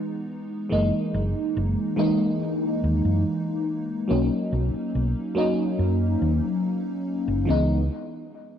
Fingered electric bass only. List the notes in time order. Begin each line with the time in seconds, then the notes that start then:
0.72 F#1
1.14 F#1
1.57 F#1
2.84 D#2
3.05 F#2
4.11 B1
4.53 B1
4.74 muted fingered electric bass stroke
4.95 B1
5.79 F#2
6.22 D#2
7.28 F#1
7.49 C#2